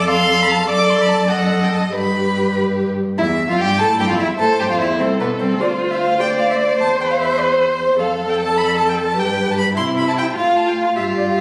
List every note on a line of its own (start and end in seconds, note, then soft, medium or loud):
0.00 0.67 F2 medium
0.00 0.67 A4 medium
0.10 0.68 F5 medium
0.10 0.44 C6 loud
0.43 0.53 B5 medium
0.52 0.69 A5 loud
0.69 1.90 F#2 medium
0.69 1.29 A4 medium
0.69 1.31 D5 medium
0.69 0.92 D6 loud
0.90 1.03 C6 medium
1.01 1.11 B5 medium
1.09 1.31 A5 medium
1.29 1.92 A4 medium
1.29 1.94 D#5 medium
1.29 1.65 F#5 medium
1.64 1.71 G5 medium
1.72 1.80 A5 medium
1.92 2.95 G2 medium
1.92 2.95 G4 medium
1.92 2.86 B4 medium
1.92 2.55 B5 medium
3.18 3.46 E2 medium
3.18 3.26 E4 medium
3.18 3.47 E5 medium
3.49 3.53 F2 medium
3.49 3.62 F4 medium
3.49 3.59 F5 medium
3.59 3.81 G2 medium
3.59 3.79 G4 medium
3.59 3.81 G5 medium
3.79 3.98 A2 medium
3.79 4.35 E4 medium
3.79 3.88 A4 medium
3.79 3.99 A5 loud
3.99 4.08 G2 medium
3.99 4.08 G4 medium
3.99 4.11 G5 medium
4.08 4.12 F2 medium
4.08 4.18 F4 medium
4.08 4.18 F5 medium
4.18 4.27 E2 medium
4.18 4.28 E4 medium
4.18 4.26 E5 medium
4.39 4.61 A2 medium
4.39 4.59 A4 medium
4.39 4.98 C5 medium
4.39 4.61 A5 medium
4.59 4.69 G2 medium
4.59 4.64 G4 medium
4.59 4.69 G5 medium
4.70 4.82 F2 medium
4.70 4.81 F4 medium
4.70 4.75 F5 medium
4.80 5.02 E2 medium
4.80 5.01 E4 medium
4.80 4.89 E5 medium
5.00 5.19 C2 medium
5.00 5.19 C4 medium
5.00 5.62 A4 medium
5.00 5.08 C5 medium
5.19 5.27 B2 medium
5.19 5.28 B3 medium
5.19 5.28 B4 medium
5.39 5.59 C2 medium
5.39 5.59 C4 medium
5.39 5.47 C5 medium
5.60 6.80 D2 medium
5.60 6.22 F4 medium
5.60 7.95 C5 medium
5.60 5.69 D5 medium
5.91 6.00 E5 medium
6.00 6.19 F5 medium
6.20 6.78 D5 medium
6.20 6.28 G5 medium
6.38 6.48 F5 medium
6.51 6.54 E5 medium
6.59 6.79 D5 medium
6.79 8.00 E2 medium
6.79 7.96 C5 medium
6.79 6.88 A5 medium
7.01 7.04 G5 medium
7.10 7.14 F5 medium
7.19 7.41 E5 medium
7.40 8.01 C5 medium
7.98 9.18 F2 medium
7.98 9.15 A4 medium
7.98 9.14 A4 medium
7.98 8.31 F5 medium
8.29 8.38 G5 medium
8.39 8.59 A5 medium
8.58 8.77 B5 medium
8.77 8.91 A5 medium
8.89 8.98 G5 medium
9.01 9.21 A5 medium
9.16 9.77 G2 medium
9.16 9.75 G4 medium
9.16 9.71 B4 medium
9.16 9.53 G5 medium
9.51 9.58 A5 medium
9.58 9.66 B5 medium
9.76 10.35 C3 medium
9.76 10.34 E4 medium
9.76 10.31 E4 medium
9.76 9.85 C6 medium
9.97 10.06 B5 medium
10.09 10.12 A5 medium
10.18 10.25 G5 medium
10.35 10.97 A2 medium
10.35 10.92 F4 medium
10.35 10.97 F4 medium
10.35 10.58 F5 medium
10.57 10.70 A5 medium
10.68 10.76 G5 medium
10.76 10.95 F5 medium
10.96 11.41 G2 soft
10.96 11.41 F4 soft
10.96 11.41 G4 medium
10.96 11.04 E5 medium
11.17 11.27 D5 medium
11.28 11.38 F5 medium